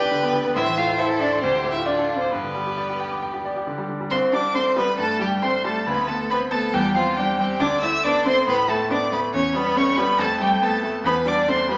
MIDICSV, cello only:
0, 0, Header, 1, 2, 480
1, 0, Start_track
1, 0, Key_signature, 0, "major"
1, 0, Tempo, 440205
1, 612, Time_signature, 4, 2, 24, 8
1, 7342, Tempo, 432277
1, 12940, End_track
2, 0, Start_track
2, 0, Title_t, "Cello"
2, 0, Program_c, 0, 42
2, 0, Note_on_c, 0, 67, 99
2, 359, Note_off_c, 0, 67, 0
2, 612, Note_on_c, 0, 64, 115
2, 699, Note_off_c, 0, 64, 0
2, 837, Note_on_c, 0, 65, 103
2, 1068, Note_on_c, 0, 64, 102
2, 1084, Note_off_c, 0, 65, 0
2, 1314, Note_on_c, 0, 62, 93
2, 1331, Note_off_c, 0, 64, 0
2, 1540, Note_off_c, 0, 62, 0
2, 1546, Note_on_c, 0, 60, 80
2, 1634, Note_off_c, 0, 60, 0
2, 1864, Note_on_c, 0, 64, 83
2, 1931, Note_off_c, 0, 64, 0
2, 2019, Note_on_c, 0, 62, 78
2, 2360, Note_on_c, 0, 60, 78
2, 2377, Note_off_c, 0, 62, 0
2, 2507, Note_off_c, 0, 60, 0
2, 2514, Note_on_c, 0, 59, 76
2, 3960, Note_off_c, 0, 59, 0
2, 4475, Note_on_c, 0, 60, 94
2, 4717, Note_on_c, 0, 62, 95
2, 4734, Note_off_c, 0, 60, 0
2, 4954, Note_on_c, 0, 60, 108
2, 4970, Note_off_c, 0, 62, 0
2, 5195, Note_off_c, 0, 60, 0
2, 5201, Note_on_c, 0, 59, 88
2, 5288, Note_off_c, 0, 59, 0
2, 5435, Note_on_c, 0, 57, 93
2, 5684, Note_on_c, 0, 55, 85
2, 5700, Note_off_c, 0, 57, 0
2, 5916, Note_off_c, 0, 55, 0
2, 5921, Note_on_c, 0, 60, 100
2, 6008, Note_off_c, 0, 60, 0
2, 6155, Note_on_c, 0, 57, 93
2, 6387, Note_off_c, 0, 57, 0
2, 6395, Note_on_c, 0, 59, 87
2, 6631, Note_on_c, 0, 57, 86
2, 6648, Note_off_c, 0, 59, 0
2, 6867, Note_off_c, 0, 57, 0
2, 6875, Note_on_c, 0, 59, 98
2, 6962, Note_off_c, 0, 59, 0
2, 7113, Note_on_c, 0, 57, 89
2, 7341, Note_off_c, 0, 57, 0
2, 7348, Note_on_c, 0, 55, 98
2, 7584, Note_on_c, 0, 53, 85
2, 7601, Note_off_c, 0, 55, 0
2, 7822, Note_off_c, 0, 53, 0
2, 7828, Note_on_c, 0, 55, 93
2, 7917, Note_off_c, 0, 55, 0
2, 8060, Note_on_c, 0, 55, 87
2, 8149, Note_off_c, 0, 55, 0
2, 8303, Note_on_c, 0, 62, 119
2, 8392, Note_off_c, 0, 62, 0
2, 8555, Note_on_c, 0, 64, 104
2, 8644, Note_off_c, 0, 64, 0
2, 8799, Note_on_c, 0, 62, 122
2, 9035, Note_on_c, 0, 60, 103
2, 9052, Note_off_c, 0, 62, 0
2, 9274, Note_on_c, 0, 59, 109
2, 9291, Note_off_c, 0, 60, 0
2, 9510, Note_off_c, 0, 59, 0
2, 9521, Note_on_c, 0, 57, 92
2, 9609, Note_off_c, 0, 57, 0
2, 9752, Note_on_c, 0, 62, 107
2, 9841, Note_off_c, 0, 62, 0
2, 9989, Note_on_c, 0, 59, 90
2, 10078, Note_off_c, 0, 59, 0
2, 10228, Note_on_c, 0, 61, 101
2, 10467, Note_on_c, 0, 59, 113
2, 10484, Note_off_c, 0, 61, 0
2, 10706, Note_on_c, 0, 61, 108
2, 10722, Note_off_c, 0, 59, 0
2, 10951, Note_on_c, 0, 59, 97
2, 10967, Note_off_c, 0, 61, 0
2, 11184, Note_on_c, 0, 57, 104
2, 11201, Note_off_c, 0, 59, 0
2, 11424, Note_on_c, 0, 55, 96
2, 11441, Note_off_c, 0, 57, 0
2, 11650, Note_off_c, 0, 55, 0
2, 11657, Note_on_c, 0, 57, 112
2, 11893, Note_off_c, 0, 57, 0
2, 11907, Note_on_c, 0, 57, 93
2, 11995, Note_off_c, 0, 57, 0
2, 12136, Note_on_c, 0, 59, 119
2, 12225, Note_off_c, 0, 59, 0
2, 12371, Note_on_c, 0, 62, 101
2, 12621, Note_on_c, 0, 60, 89
2, 12637, Note_off_c, 0, 62, 0
2, 12849, Note_off_c, 0, 60, 0
2, 12856, Note_on_c, 0, 59, 98
2, 12940, Note_off_c, 0, 59, 0
2, 12940, End_track
0, 0, End_of_file